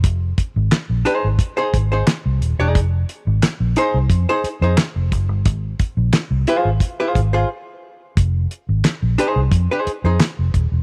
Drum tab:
HH |xxxxxxxx|xxxxxxxx|xxxxxx--|xxxxxxxx|
CP |--x---x-|--x---x-|--x-----|--x---x-|
SD |--o---o-|--o---o-|--o-----|--o---o-|
BD |oo--oo--|o---o--o|oo--oo--|o---o--o|